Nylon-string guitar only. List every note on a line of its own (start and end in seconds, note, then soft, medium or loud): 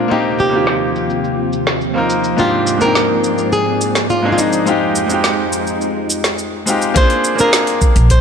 0.11 0.40 D#4 medium
0.40 1.50 G4 medium
2.39 2.81 F4 medium
2.82 3.49 A#4 loud
3.53 4.10 G#4 medium
4.10 4.31 F4 medium
4.32 4.39 F4 medium
4.38 6.63 D#4 medium
6.97 7.36 C5 loud
7.40 8.11 A#4 loud
8.11 8.21 C5 loud